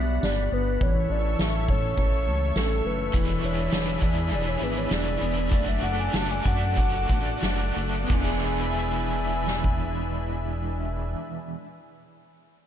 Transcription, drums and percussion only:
0.23 snare, ride, tambourine
0.81 kick, ride
1.39 snare, ride, tambourine
1.69 kick
1.97 kick, ride
2.56 snare, ride, tambourine
3.14 kick, ride
3.73 snare, tambourine
4.02 kick
4.31 ride
4.91 snare, tambourine
5.52 kick, ride
6.14 snare, tambourine
6.46 kick
6.77 kick, ride
7.09 kick
7.43 snare, tambourine
8.10 kick, crash
9.47 snare
9.64 kick

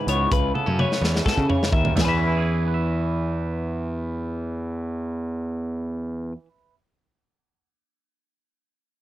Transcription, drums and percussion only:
0.08 closed hi-hat
0.32 kick, closed hi-hat
0.55 high tom
0.67 high tom
0.79 high tom
0.92 snare
1.04 snare
1.16 snare
1.26 kick, snare
1.38 kick
1.50 mid tom
1.63 snare
1.73 kick
1.85 floor tom
1.97 snare, floor tom, crash

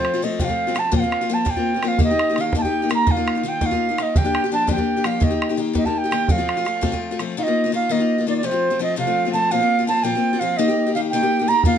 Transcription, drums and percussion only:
0.05 bodhran
0.39 bodhran
0.49 bodhran
0.76 bodhran
0.93 bodhran
1.12 bodhran
1.46 bodhran
1.56 bodhran
1.83 bodhran
1.99 bodhran
2.19 bodhran
2.36 bodhran
2.53 bodhran
2.64 bodhran
2.91 bodhran
3.07 bodhran
3.28 bodhran
3.61 bodhran
3.72 bodhran
3.98 bodhran
4.16 bodhran
4.35 bodhran
4.68 bodhran
4.78 bodhran
5.04 bodhran
5.21 bodhran
5.42 bodhran
5.75 bodhran
5.85 bodhran
6.12 bodhran
6.28 bodhran
6.49 bodhran
6.66 bodhran
6.83 bodhran
6.93 bodhran
7.19 bodhran
11.63 bodhran

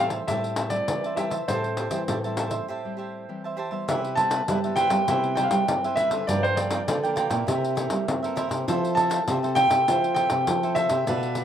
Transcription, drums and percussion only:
0.10 pandeiro
0.28 pandeiro
0.44 pandeiro
0.56 pandeiro
0.70 pandeiro
0.88 pandeiro
1.04 pandeiro
1.17 pandeiro
1.31 pandeiro
1.48 pandeiro
1.64 pandeiro
1.77 pandeiro
1.91 pandeiro
2.08 pandeiro
2.24 pandeiro
2.37 pandeiro
2.51 pandeiro
3.89 pandeiro
4.05 pandeiro
4.17 pandeiro
4.31 pandeiro
4.48 pandeiro
4.64 pandeiro
4.76 pandeiro
4.90 pandeiro
5.08 pandeiro
5.24 pandeiro
5.37 pandeiro
5.51 pandeiro
5.68 pandeiro
5.84 pandeiro
5.97 pandeiro
6.11 pandeiro
6.29 pandeiro
6.44 pandeiro
6.57 pandeiro
6.71 pandeiro
6.88 pandeiro
7.04 pandeiro
7.17 pandeiro
7.31 pandeiro
7.48 pandeiro
7.64 pandeiro
7.77 pandeiro
7.90 pandeiro
8.08 pandeiro
8.24 pandeiro
8.37 pandeiro
8.51 pandeiro
8.68 pandeiro
8.85 pandeiro
8.97 pandeiro
9.11 pandeiro
9.28 pandeiro
9.44 pandeiro
9.56 pandeiro
9.70 pandeiro
9.88 pandeiro
10.04 pandeiro
10.16 pandeiro
10.30 pandeiro
10.47 pandeiro
10.63 pandeiro
10.76 pandeiro
10.89 pandeiro
11.07 pandeiro
11.23 pandeiro
11.35 pandeiro

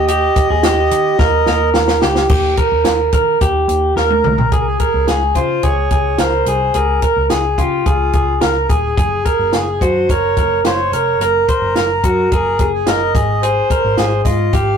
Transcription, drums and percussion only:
0.08 closed hi-hat
0.36 kick, closed hi-hat
0.63 snare, closed hi-hat
0.91 closed hi-hat
1.18 kick, snare
1.46 snare
1.74 snare
1.88 snare
2.02 snare
2.15 snare
2.29 kick, crash
2.57 kick, closed hi-hat
2.85 snare, closed hi-hat
3.12 kick, closed hi-hat
3.41 kick, closed hi-hat
3.69 closed hi-hat
3.96 snare
4.10 high tom
4.24 mid tom
4.38 floor tom
4.52 kick, closed hi-hat
4.79 kick, closed hi-hat
5.08 snare, closed hi-hat
5.35 kick, closed hi-hat
5.63 kick, closed hi-hat
5.91 kick, closed hi-hat
6.18 snare, closed hi-hat
6.46 closed hi-hat
6.74 closed hi-hat
7.02 kick, closed hi-hat
7.30 snare, closed hi-hat
7.58 kick, closed hi-hat
7.86 kick, closed hi-hat
8.13 kick, closed hi-hat
8.41 snare, closed hi-hat
8.69 kick, closed hi-hat
8.98 kick, closed hi-hat
9.25 kick, closed hi-hat
9.53 snare, closed hi-hat
9.81 kick, closed hi-hat
10.09 kick, closed hi-hat
10.37 kick, closed hi-hat
10.65 snare, closed hi-hat
10.93 closed hi-hat
11.21 closed hi-hat
11.49 kick, closed hi-hat
11.76 snare, closed hi-hat
12.04 kick, closed hi-hat
12.32 kick, closed hi-hat
12.59 kick, closed hi-hat
12.87 snare, closed hi-hat
13.15 kick, closed hi-hat
13.43 closed hi-hat
13.70 kick, closed hi-hat
13.97 snare, closed hi-hat
14.25 kick, closed hi-hat
14.53 kick, closed hi-hat

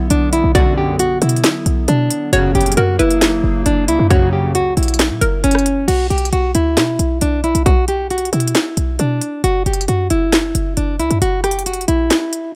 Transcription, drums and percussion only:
0.10 closed hi-hat
0.33 closed hi-hat
0.55 kick, closed hi-hat
0.99 closed hi-hat
1.22 closed hi-hat
1.29 closed hi-hat
1.36 closed hi-hat
1.44 snare, clap, closed hi-hat
1.66 closed hi-hat
1.88 closed hi-hat
2.10 closed hi-hat
2.33 closed hi-hat
2.55 closed hi-hat
2.61 closed hi-hat
2.66 closed hi-hat
2.72 closed hi-hat
2.77 closed hi-hat
2.99 closed hi-hat
3.11 closed hi-hat
3.22 snare, clap, closed hi-hat
3.66 closed hi-hat
3.88 closed hi-hat
4.11 kick, closed hi-hat
4.55 closed hi-hat
4.77 closed hi-hat, open hi-hat
4.83 closed hi-hat
4.88 closed hi-hat
4.94 closed hi-hat
4.99 snare, clap, closed hi-hat
5.21 closed hi-hat
5.44 closed hi-hat
5.51 cross-stick, closed hi-hat
5.59 closed hi-hat
5.66 closed hi-hat
5.88 closed hi-hat, crash
6.10 closed hi-hat
6.18 closed hi-hat
6.25 closed hi-hat
6.33 closed hi-hat
6.55 closed hi-hat
6.77 snare, clap, closed hi-hat
6.99 closed hi-hat
7.21 closed hi-hat
7.44 closed hi-hat
7.55 closed hi-hat
7.66 kick, closed hi-hat
7.88 closed hi-hat
8.10 closed hi-hat
8.18 closed hi-hat
8.25 closed hi-hat
8.33 closed hi-hat
8.40 closed hi-hat
8.48 closed hi-hat
8.55 snare, clap, closed hi-hat
8.77 closed hi-hat
8.99 closed hi-hat
9.21 closed hi-hat
9.44 closed hi-hat
9.66 closed hi-hat
9.73 closed hi-hat
9.81 closed hi-hat
9.88 closed hi-hat
10.10 closed hi-hat
10.33 snare, clap, closed hi-hat
10.55 closed hi-hat
10.77 closed hi-hat
10.99 closed hi-hat
11.11 closed hi-hat
11.22 closed hi-hat
11.44 cross-stick, closed hi-hat
11.51 closed hi-hat
11.59 closed hi-hat
11.66 closed hi-hat
11.74 closed hi-hat
11.81 closed hi-hat
11.88 closed hi-hat
12.11 snare, clap, closed hi-hat
12.33 closed hi-hat

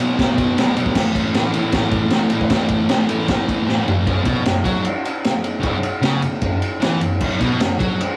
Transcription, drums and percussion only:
0.19 kick, snare, ride
0.38 kick, ride
0.58 snare, ride
0.77 ride
0.86 kick
0.95 kick, snare, crash
1.15 kick, ride
1.34 snare, ride
1.54 ride
1.72 kick, snare, ride
1.91 kick, ride
2.10 snare, ride
2.30 ride
2.41 kick
2.50 kick, snare, ride
2.69 kick, ride
2.89 snare, ride
3.09 ride
3.28 kick, snare, ride
3.49 kick, ride
3.69 snare
3.88 floor tom
4.07 kick, ride
4.25 kick, ride
4.45 snare, ride
4.65 kick, ride
4.85 ride
5.05 ride
5.24 snare, ride
5.44 ride
5.63 kick, ride
5.83 ride
6.03 snare, ride
6.22 ride
6.42 kick, ride
6.62 ride
6.82 snare, ride
7.01 ride
7.20 kick, crash
7.41 kick, ride
7.60 snare, ride
7.80 kick, ride
8.01 ride

